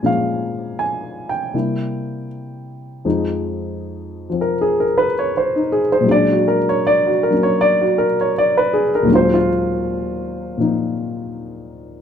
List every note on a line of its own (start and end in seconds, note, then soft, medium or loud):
0.00 1.54 A#2 soft
0.00 1.54 F3 soft
0.00 0.04 G#3 soft
0.00 1.55 G#3 soft
0.00 1.55 A#3 soft
0.00 0.04 C#4 soft
0.00 1.55 C#4 soft
0.00 0.79 G#5 medium
0.00 1.56 A#5 medium
0.06 0.82 F5 medium
0.79 1.31 G#5 medium
1.29 2.26 G5 medium
1.54 3.05 C3 soft
1.54 3.05 G3 soft
1.54 3.05 A#3 soft
1.54 3.06 E4 soft
3.05 6.06 F2 soft
3.05 4.28 F3 soft
3.05 6.04 G#3 soft
3.05 5.54 D#4 medium
4.30 6.06 F3 soft
4.30 6.07 C4 soft
4.41 4.54 A#4 medium
4.61 4.83 G#4 medium
4.80 5.05 A#4 medium
4.98 5.14 B4 medium
5.19 5.31 C#5 medium
5.37 5.59 C5 medium
5.56 5.81 D#4 soft
5.72 5.89 G#4 medium
5.92 6.05 C5 medium
6.01 9.04 A#2 medium
6.01 7.29 F#3 soft
6.06 9.07 G#3 medium
6.06 7.32 C#4 soft
6.11 9.10 D4 medium
6.11 6.34 D5 medium
6.32 6.56 F#4 medium
6.48 6.64 A#4 medium
6.69 6.81 C#5 medium
6.87 7.09 D5 medium
7.07 7.31 F#4 medium
7.23 7.40 A#4 medium
7.31 9.06 F#3 soft
7.31 9.08 A#3 soft
7.31 9.08 C#4 soft
7.43 7.56 C#5 medium
7.61 7.84 D5 loud
7.81 8.06 F#4 medium
7.98 8.15 A#4 medium
8.21 8.32 C#5 medium
8.38 8.60 D5 medium
8.57 8.82 B4 medium
8.73 8.90 G#4 medium
8.95 9.07 A#4 medium
9.03 12.02 D#2 medium
9.03 10.56 A#2 medium
9.07 12.02 F#3 medium
9.07 12.02 G#3 soft
9.11 12.02 C#4 medium
9.11 9.32 F4 medium
9.11 9.36 C5 medium
9.34 9.49 F4 medium
10.57 12.02 A#2 soft
10.57 12.02 F3 soft
10.57 12.02 C4 soft
10.57 12.02 D#4 soft